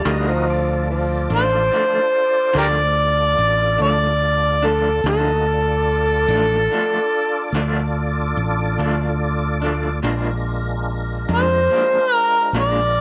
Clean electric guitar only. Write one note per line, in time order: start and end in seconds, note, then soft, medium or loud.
0.05 0.31 D3 medium
0.05 0.31 F3 medium
0.05 0.31 A3 medium
0.05 0.31 D4 medium
1.30 1.57 F3 soft
1.30 1.56 A3 soft
1.30 1.55 D4 soft
1.72 1.97 D3 medium
1.72 1.98 F3 medium
1.72 1.98 A3 medium
1.72 1.98 D4 medium
2.53 2.79 D3 medium
2.53 2.80 F3 medium
2.53 2.80 A3 medium
2.53 2.81 D4 medium
3.78 4.06 F3 soft
3.78 4.05 A3 soft
3.78 4.04 D4 medium
4.63 4.89 F3 soft
4.63 4.88 A3 soft
4.63 4.88 D4 soft
5.06 5.30 D3 medium
5.06 5.31 F3 medium
5.06 5.31 A3 medium
5.06 5.31 D4 medium
6.30 6.56 F3 soft
6.30 6.55 A3 soft
6.30 6.55 D4 soft
6.72 6.96 D3 medium
6.72 6.97 F3 medium
6.72 6.97 A3 medium
6.72 6.97 D4 medium
7.55 7.79 D3 medium
7.55 7.80 F3 medium
7.55 7.80 A3 medium
7.55 7.80 D4 medium
8.79 9.05 F3 soft
8.79 9.04 A3 medium
8.79 9.04 D4 medium
9.62 9.88 F3 soft
9.62 9.88 A3 soft
9.62 9.87 D4 medium
10.03 10.28 A#2 medium
10.03 10.29 F3 medium
10.03 10.29 G#3 medium
10.03 10.29 D4 medium
11.29 11.55 F3 soft
11.29 11.54 G#3 soft
11.29 11.54 D4 medium
11.70 11.95 A#2 medium
11.70 11.96 F3 medium
11.70 11.96 G#3 medium
11.70 11.97 D4 medium
12.54 12.79 A#2 medium
12.54 12.79 F3 medium
12.54 12.80 G#3 medium
12.54 12.80 D4 medium